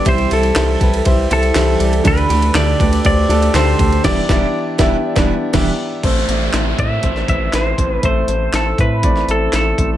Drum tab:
CC |----------------|----------------|x-----------x---|x---------------|
RD |xxxxx-xxx-xxx-xx|xxxxx-xxx-xxx-xx|----------------|----------------|
HH |----------------|----------------|----------------|x-x-x-x-x-x-x-x-|
CP |----x-------x---|----x-------x---|----------------|----x-------x---|
SD |----o-------o---|----o-------o---|o-o---o--o--o---|----o----o--o---|
BD |o-----o-o-------|o-----o-o-----o-|o-o---o--o--o---|o-----o-o-o---o-|

CC |----------------|
RD |----------------|
HH |x-x-x-x-x-x-x-x-|
CP |----x-------x---|
SD |----o----o--o---|
BD |o-----o-o-----o-|